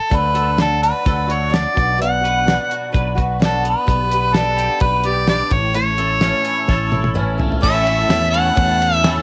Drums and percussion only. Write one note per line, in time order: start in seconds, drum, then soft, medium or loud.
0.11 kick medium
0.11 closed hi-hat medium
0.35 closed hi-hat medium
0.58 snare loud
0.58 closed hi-hat medium
0.83 closed hi-hat medium
1.06 kick loud
1.06 closed hi-hat medium
1.30 closed hi-hat medium
1.54 snare loud
1.54 closed hi-hat medium
1.77 kick loud
1.77 closed hi-hat medium
2.02 closed hi-hat medium
2.25 closed hi-hat medium
2.48 snare loud
2.48 closed hi-hat medium
2.71 closed hi-hat medium
2.94 kick loud
2.94 closed hi-hat medium
3.18 kick medium
3.18 closed hi-hat medium
3.42 snare loud
3.42 closed hi-hat medium
3.65 closed hi-hat medium
3.88 kick medium
3.88 closed hi-hat medium
4.11 closed hi-hat medium
4.34 snare loud
4.34 closed hi-hat medium
4.58 closed hi-hat medium
4.80 kick loud
4.80 closed hi-hat medium
5.04 closed hi-hat medium
5.28 snare loud
5.28 closed hi-hat medium
5.51 kick loud
5.51 closed hi-hat medium
5.75 closed hi-hat medium
5.98 closed hi-hat medium
6.21 snare loud
6.21 closed hi-hat medium
6.45 closed hi-hat medium
6.68 kick medium
6.68 snare medium
6.92 high tom medium
7.04 high tom medium
7.16 mid tom medium
7.40 floor tom medium
7.52 floor tom medium
7.63 kick loud
7.63 crash loud
7.87 ride medium
8.10 snare loud
8.10 ride medium
8.34 ride medium
8.57 kick loud
8.57 ride medium
8.82 ride medium
9.04 snare loud
9.04 ride medium